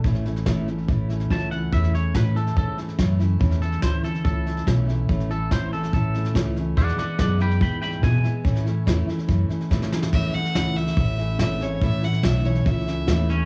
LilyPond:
<<
  \new Staff \with { instrumentName = "Fiddle" } { \time 4/4 \key a \major \tempo 4 = 143 r1 | r1 | r1 | r1 |
r1 | r1 | e''8 fis''4 e''4. e''8 cis''8 | e''8 fis''8 e''8 cis''8 e''4. r8 | }
  \new Staff \with { instrumentName = "Clean electric guitar" } { \time 4/4 \key a \major r2. a''8 fis''8 | e''8 cis''8 b'8 a'8 a'8 r4. | r8 a'8 c''8 a'8 a'4 r4 | r8 a'8 c''8 a'8 a'4 r4 |
<d'' fis''>8 <d'' fis''>8 <d'' fis''>8 <g'' b''>8 <g'' b''>8 <g'' b''>8 gis''4~ | gis''2 r2 | r1 | r2. r8 cis'8 | }
  \new Staff \with { instrumentName = "Steel-string acoustic guitar" } { \time 4/4 \key a \major <a, e a cis' e'>8 <a cis' e'>8 <a, e a cis' e'>8 <a cis' e'>8 <e a cis' e'>8 <a cis' e'>8 <a, e a cis' e'>8 <a cis' e'>8 | <a, e a cis' e'>8 <a cis' e'>8 <a, e a cis' e'>8 <a cis' e'>8 <e a cis' e'>8 <a cis' e'>8 <a, e a cis' e'>8 <a cis' e'>8 | <a, e a cis' e'>8 <a cis' e'>8 <a, e a cis' e'>8 <a cis' e'>8 <e a cis' e'>8 <a cis' e'>8 <a, e a cis' e'>8 <a cis' e'>8 | <a, e a cis' e'>8 <a cis' e'>8 <a, e a cis' e'>8 <a cis' e'>8 <e a cis' e'>8 <a cis' e'>8 <a, e a cis' e'>8 <a cis' e'>8 |
<e, b, e gis b e'>8 <e gis b e'>8 <e, b, e gis b e'>8 <e gis b e'>8 <e gis b e'>8 <e gis b e'>8 <e, b, e gis b e'>8 <e gis b e'>8 | <a, e a cis' e'>8 <a cis' e'>8 <a, e a cis' e'>8 <a cis' e'>8 <e a cis' e'>8 <a cis' e'>8 <a, e a cis' e'>8 <a cis' e'>8 | <a, e a cis' e'>8 <a cis' e'>8 <a, e a cis' e'>8 <a cis' e'>8 <e a cis' e'>8 <a cis' e'>8 <a, e a cis' e'>8 <a cis' e'>8 | <a, e a cis' e'>8 <a cis' e'>8 <a, e a cis' e'>8 <a cis' e'>8 <e a cis' e'>8 <a cis' e'>8 <a, e a cis' e'>8 <a cis' e'>8 | }
  \new Staff \with { instrumentName = "Upright bass" } { \clef bass \time 4/4 \key a \major a,,4 gis,,4 a,,4 cis,4 | e,4 a,4 gis,4 fis,4 | e,4 d,4 cis,4 b,,4 | a,,4 gis,,4 a,,4 cis,4 |
e,8 r8 fis,4 gis,4 b,8 r8 | a,4 e,8 r8 fis,8 r8 gis,4 | e,8 r8 cis,4 a,,4 gis,,4 | a,,4 b,,4 cis,4 dis,4 | }
  \new DrumStaff \with { instrumentName = "Drums" } \drummode { \time 4/4 <bd sn>16 sn16 sn16 sn16 <hhp bd sn>8 sn16 sn16 <bd sn>8 sn16 sn16 <hhp bd sn>8 sn8 | <bd sn>16 sn16 sn8 <hhp bd sn>8 sn16 sn16 <bd sn>8 sn16 sn16 <hhp bd sn>8 sn8 | <bd sn>16 sn16 sn16 sn16 <hhp bd sn>8 sn16 sn16 <bd sn>8 sn16 sn16 <hhp bd sn>8 sn8 | <bd sn>16 sn16 sn8 <hhp bd sn>8 sn16 sn16 <bd sn>8 sn16 sn16 <hhp bd sn>8 sn8 |
<bd sn>16 sn16 sn8 <hhp bd sn>8 sn16 sn16 <bd sn>8 sn16 sn16 <hhp bd sn>8 sn8 | <bd sn>16 sn16 sn8 <hhp bd sn>8 sn16 sn16 <bd sn>8 sn16 sn16 <hhp bd sn>16 sn16 sn16 sn16 | <cymc bd sn>8 sn16 sn16 <hhp sn>8 sn16 sn16 <bd sn>8 sn8 <hhp sn>8 sn8 | <bd sn>8 sn16 sn16 <hhp sn>8 sn16 sn16 <bd sn>8 sn8 <hhp sn>8 sn8 | }
>>